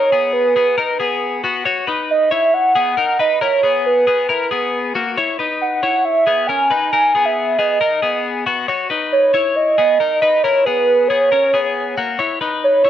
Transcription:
Already playing: clean electric guitar D#4 A#4, soft synth lead C#5
0.12 clean electric guitar B3 G#4
0.33 soft synth lead B4
0.56 clean electric guitar B3 G#4
0.78 clean electric guitar D#4 A#4
1.00 clean electric guitar B3 G#4
1.44 clean electric guitar B3 F#4
1.65 clean electric guitar F#4 C#5
1.87 clean electric guitar D#4 B4
2.11 soft synth lead D#5
2.31 clean electric guitar E4 C#5, soft synth lead E5
2.54 soft synth lead F#5
2.75 clean electric guitar B3 G#4
2.97 clean electric guitar D#4 A#4
3.19 clean electric guitar D#4 B4, soft synth lead D#5
3.41 clean electric guitar E4 A#4, soft synth lead C#5
3.63 clean electric guitar B3 G#4
3.86 soft synth lead B4
4.07 clean electric guitar B3 G#4
4.29 clean electric guitar E4 A#4
4.51 clean electric guitar B3 G#4
4.95 clean electric guitar A#3 F#4
5.18 clean electric guitar E4 C#5
5.39 clean electric guitar D#4 B4
5.61 soft synth lead F#5
5.83 clean electric guitar E4 C#5
6.05 soft synth lead E5
6.27 clean electric guitar B3 G#4
6.47 clean electric guitar C#4 A#4, soft synth lead G#5
6.71 clean electric guitar D#4 B4
6.92 clean electric guitar D#4 A#4, soft synth lead G#5
7.15 clean electric guitar B3 G#4
7.25 soft synth lead E5
7.58 clean electric guitar B3 G#4, soft synth lead D#5
7.81 clean electric guitar D#4 A#4
8.02 clean electric guitar B3 G#4
8.46 clean electric guitar B3 F#4
8.68 clean electric guitar F#4 C#5
8.90 clean electric guitar D#4 B4
9.12 soft synth lead C#5
9.34 clean electric guitar E4 C#5
9.56 soft synth lead D#5
9.78 clean electric guitar B3 G#4
10.00 clean electric guitar D#4 A#4
10.21 clean electric guitar D#4 B4, soft synth lead D#5
10.43 clean electric guitar E4 A#4, soft synth lead C#5
10.65 clean electric guitar B3 G#4, soft synth lead B4
11.08 clean electric guitar B3 G#4, soft synth lead C#5
11.32 clean electric guitar C#4 A#4
11.54 clean electric guitar B3 G#4
11.98 clean electric guitar A#3 F#4
12.19 clean electric guitar E4 C#5
12.41 clean electric guitar D#4 B4
12.64 soft synth lead C#5
12.85 clean electric guitar E4 C#5

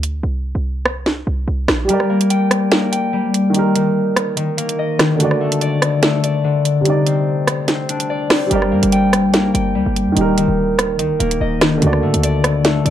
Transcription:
Already playing: 808-style bass D2
0.03 closed hi-hat
0.23 808-style bass C2
0.55 808-style bass C2
0.86 cross-stick
1.06 snare
1.27 808-style bass C2
1.48 808-style bass C2
1.68 808-style bass A#1, cross-stick, snare
1.85 grand piano G3 G4
1.89 harp G3, grand piano A#4, closed hi-hat
1.93 grand piano D5
2.00 cross-stick
2.10 harp A#3
2.21 closed hi-hat
2.30 harp G5, closed hi-hat
2.51 cross-stick, closed hi-hat
2.72 harp A#3, snare, closed hi-hat
2.92 harp G5, closed hi-hat
3.13 harp G3
3.34 closed hi-hat
3.50 grand piano D#3 D#4
3.54 grand piano G4, closed hi-hat
3.59 grand piano A#4
3.75 harp D#3, closed hi-hat
4.16 cross-stick, closed hi-hat
4.37 harp D#3, closed hi-hat
4.57 harp A#3, closed hi-hat
4.69 closed hi-hat
4.79 harp D#5
4.99 harp D#3, cross-stick, snare, closed hi-hat
5.16 grand piano D3 A3, harp D3
5.20 grand piano F#4, closed hi-hat
5.24 grand piano D5
5.31 cross-stick
5.41 harp A3
5.52 closed hi-hat
5.61 harp D5, closed hi-hat
5.82 cross-stick, closed hi-hat
6.03 harp A3, snare, closed hi-hat
6.24 harp D5, closed hi-hat
6.44 harp D3
6.65 closed hi-hat
6.81 grand piano C3 G3
6.85 grand piano D#4, closed hi-hat
6.90 grand piano D5
7.06 harp C4, closed hi-hat
7.47 cross-stick, closed hi-hat
7.68 harp C4, snare, closed hi-hat
7.89 harp D4, closed hi-hat
8.00 closed hi-hat
8.10 harp D5
8.30 harp C4, cross-stick, snare, open hi-hat
8.47 grand piano G3 G4
8.51 808-style bass G1, harp G3, grand piano A#4, closed hi-hat
8.55 grand piano D5
8.62 cross-stick
8.72 808-style bass G2, harp A#3
8.83 808-style bass G1, closed hi-hat
8.92 harp G5, closed hi-hat
9.13 cross-stick, closed hi-hat
9.24 808-style bass A#1
9.34 harp A#3, snare, closed hi-hat
9.54 808-style bass G1, harp G5, closed hi-hat
9.75 808-style bass D2, harp G3
9.86 808-style bass G1
9.96 closed hi-hat
10.07 808-style bass G2
10.12 grand piano D#3 D#4
10.17 808-style bass D#1, grand piano G4, closed hi-hat
10.21 grand piano A#4
10.37 harp D#3, closed hi-hat
10.48 808-style bass D#1
10.79 cross-stick, closed hi-hat
10.99 808-style bass D#2, harp D#3, closed hi-hat
11.10 808-style bass D#1
11.19 808-style bass D#1, harp A#3, closed hi-hat
11.31 closed hi-hat
11.41 808-style bass D#1, harp D#5
11.61 harp D#3, cross-stick, snare, closed hi-hat
11.78 grand piano D3 A3, harp D3
11.82 808-style bass D2, grand piano F#4, closed hi-hat
11.87 grand piano D5
11.93 cross-stick
12.03 808-style bass A2, harp A3
12.14 808-style bass D2, closed hi-hat
12.23 harp D5, closed hi-hat
12.44 cross-stick, closed hi-hat
12.65 harp A3, snare, closed hi-hat
12.85 808-style bass D2, harp D5, closed hi-hat

